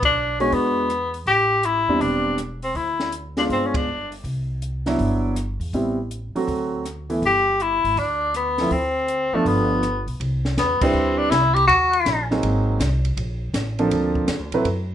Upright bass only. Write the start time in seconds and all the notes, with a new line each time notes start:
Already playing: B1
0.52 E2
1.26 A1
1.88 E2
2.00 E1
2.74 D2
3.50 G1
4.24 C2
4.98 G1
5.60 E2
5.73 A1
6.35 muted upright bass stroke
6.47 D2
7.22 G1
7.84 G#1
7.96 D2
8.71 D2
9.32 F#1
9.45 G1
10.06 B1
10.20 C2
10.57 E2
10.81 muted upright bass stroke
10.93 D2
11.31 C2
11.68 D#2
12.05 A#1
12.42 G#1
12.80 C2
13.17 A#1
13.53 A1
13.91 D2
14.28 E2
14.39 D2
14.52 A#1
14.64 F#2